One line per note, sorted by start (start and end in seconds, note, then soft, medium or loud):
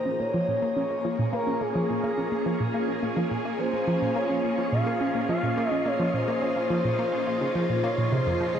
0.00 8.60 A#3 medium
0.00 8.60 D#4 medium
0.00 8.60 F4 medium
0.00 8.60 G#4 medium
0.00 0.37 A#4 medium
0.00 0.21 C5 loud
0.00 8.60 D#5 medium
0.00 1.09 A#5 medium
0.06 0.19 C#4 medium
0.20 0.25 A#3 medium
0.20 0.76 C#5 loud
0.34 0.43 F3 medium
0.48 0.57 A#2 medium
0.62 0.68 A#3 medium
0.77 0.90 C#4 medium
0.77 1.29 C#5 loud
0.91 0.96 A#3 medium
1.05 1.14 F3 medium
1.19 1.28 A#2 medium
1.33 1.38 A#3 loud
1.33 8.12 C#4 medium
1.33 1.63 A#4 loud
1.47 1.60 C#4 medium
1.61 1.66 A#3 medium
1.61 3.31 G#4 loud
1.75 1.84 F3 medium
1.89 1.98 A#2 medium
2.04 2.09 A#3 loud
2.18 2.31 C#4 medium
2.32 2.37 A#3 medium
2.46 2.55 F3 loud
2.60 2.69 A#2 medium
2.74 2.80 A#3 loud
2.88 3.02 C#4 medium
3.03 3.08 A#3 medium
3.17 3.26 F3 loud
3.31 3.40 A#2 medium
3.45 3.50 A#3 loud
3.59 3.73 C#4 medium
3.59 4.12 C5 medium
3.73 3.79 A#3 medium
3.87 3.96 F3 loud
4.02 4.11 A#2 medium
4.16 4.21 A#3 loud
4.16 4.68 C#5 medium
4.30 4.43 C#4 medium
4.44 4.49 A#3 medium
4.58 4.67 F3 medium
4.72 4.81 A#2 medium
4.72 5.25 F5 medium
4.86 4.92 A#3 loud
5.01 5.14 C#4 medium
5.15 5.20 A#3 medium
5.29 5.38 F3 loud
5.29 5.70 F5 loud
5.43 5.52 A#2 medium
5.57 5.63 A#3 loud
5.70 5.85 C#4 medium
5.70 5.88 D#5 loud
5.86 5.91 A#3 medium
5.86 6.16 C#5 medium
6.00 6.09 F3 medium
6.14 6.23 A#2 medium
6.14 7.86 C5 loud
6.28 6.33 A#3 loud
6.42 6.55 C#4 medium
6.56 6.62 A#3 medium
6.70 6.79 F3 medium
6.85 6.94 A#2 medium
6.99 7.04 A#3 medium
7.13 7.26 C#4 medium
7.27 7.36 A#3 medium
7.41 7.47 C#3 medium
7.55 7.64 F3 medium
7.70 7.83 A#2 medium
7.84 7.89 A#3 loud
7.84 8.14 C#5 medium
7.98 8.07 A#2 medium
8.12 8.21 C3 loud
8.12 8.60 C5 loud
8.27 8.35 F2 medium
8.40 8.46 F3 loud
8.55 8.60 G#3 medium